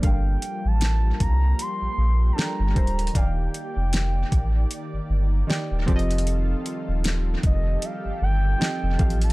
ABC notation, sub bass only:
X:1
M:4/4
L:1/16
Q:"Swing 16ths" 1/4=77
K:Fmix
V:1 name="Sub bass" clef=bass
G,,,2 z A,,,3 C,,2 z B,,, B,,,2 z G,,, D,,,2 | E,,,2 z F,,,3 A,,,2 z G,,, G,,,2 z E,,, F,,,2- | F,,,2 z E,,,3 F,,,2 z G,,, G,,,2 z F,,, A,,,2 |]